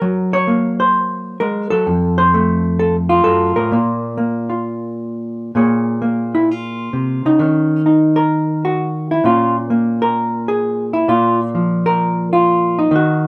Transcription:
Already playing: A#4
0.02 F#3
0.33 C#5
0.47 A#3
0.80 C5
1.40 G#3 A#4
1.70 F#3 A4
1.87 F2
2.18 C5
2.34 A3
2.79 A4
3.09 F4
3.24 F#2 A4
3.56 A2 A#4
3.72 A#2 A#3 F4
4.17 A#3
4.50 F4
5.55 A#2 A#3 G#4 C#5
6.02 A#3
6.35 E4
6.51 F4
6.93 C3
7.25 C#3 D#4
7.39 D#3 C#4
7.86 D#4
8.16 A#4
8.65 F#4
9.11 E4
9.24 A#2 A#3 C#4 F4
9.70 A#3
10.02 A#4
10.48 G#4
10.93 E4
11.08 A#2 F4
11.55 F3
11.86 A#4
12.33 F4
12.79 D#4
12.91 D#3 D#4
12.96 F#4

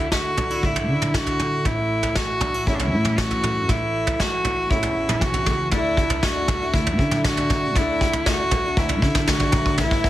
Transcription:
Already playing: D2 E4
0.11 D3 F#4, kick, snare
0.37 D4, floor tom, mid tom
0.51 E4
0.63 D2 A2 D4 E4, kick
0.76 floor tom
0.89 D3
1.02 mid tom
1.14 D3 F#4, kick, snare, mid tom
1.27 floor tom
1.39 A3, mid tom
1.65 A1 A2 E4, kick, floor tom
2.03 floor tom
2.15 E3 F#4, kick, snare
2.41 D4, floor tom, mid tom
2.54 E4
2.67 A1 E2 C#4 E4, kick
2.75 D4
2.79 E4, floor tom
2.93 A2
3.05 mid tom
3.18 E3 F#4, kick, snare, mid tom
3.31 floor tom
3.43 A3, mid tom
3.68 A1 A2 E4, kick, floor tom
4.07 floor tom
4.19 E3 F#4, kick, snare
4.45 E4, floor tom
4.69 A1 E2 C#4 E4, kick
4.83 floor tom
4.94 A1
5.09 mid tom
5.20 B1 E3, kick, mid tom
5.24 F#4
5.34 floor tom
5.46 C#2 A3, kick, mid tom
5.71 D2 D3 A3 D4 E4, kick, floor tom
5.97 D3 A3 D4 E4, kick
6.10 A3 D4 E4, floor tom
6.23 D3 A3 D4 E4 F#4, kick, snare
6.48 D3 A3 D4, kick, floor tom, mid tom
6.53 E4
6.62 A3 D4 E4
6.73 D2 D3 A3 E4, kick
6.77 D4 E4
6.87 A3 D4 E4, floor tom
6.99 D3, kick
7.11 E4, mid tom
7.16 A3 D4
7.24 D3 A3 D4 F#4, kick, snare, mid tom
7.29 E4
7.37 floor tom
7.50 D3 A3 D4, kick, mid tom
7.54 E4
7.76 D2 D3 A3 D4 E4, kick, floor tom
8.01 D3 A3 D4 E4, kick
8.13 A3 D4 E4, floor tom
8.26 D3 A3 D4 E4 F#4, kick, snare
8.40 A3 D4 E4
8.51 D3 A3 D4 E4, kick, floor tom, mid tom
8.66 A3 D4 E4
8.77 D2 D3 A3 D4 E4, kick
8.89 D4 E4, floor tom
8.94 A3
9.02 D3, kick
9.15 A3 D4 E4, kick, mid tom
9.27 D3 A3 D4 E4 F#4, kick, snare, mid tom
9.39 kick, floor tom
9.52 D3 A3 D4 E4, kick, mid tom
9.66 kick
9.78 A1 A2 E3 A3 C#4 E4, kick, floor tom
9.91 kick
10.04 E3, kick

